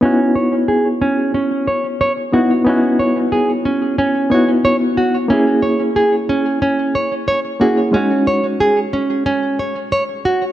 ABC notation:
X:1
M:4/4
L:1/16
Q:"Swing 16ths" 1/4=91
K:C#dor
V:1 name="Nylon-string guitar"
C2 c z G z C2 C2 c z c2 F z | C2 c z G z C2 C2 c z c2 F z | C2 c z G z C2 C2 c z c2 F z | C2 c z G z C2 C2 c z c2 F z |]
V:2 name="Reed electric piano"
[B,DEF]12- [B,DEF]2 [B,DEF]2 | [B,DEF]8- [B,DEF]2 [B,DEF]6 | [A,CEG]12- [A,CEG]2 [A,CEG]2 | [G,CDF]8- [G,CDF]2 z6 |]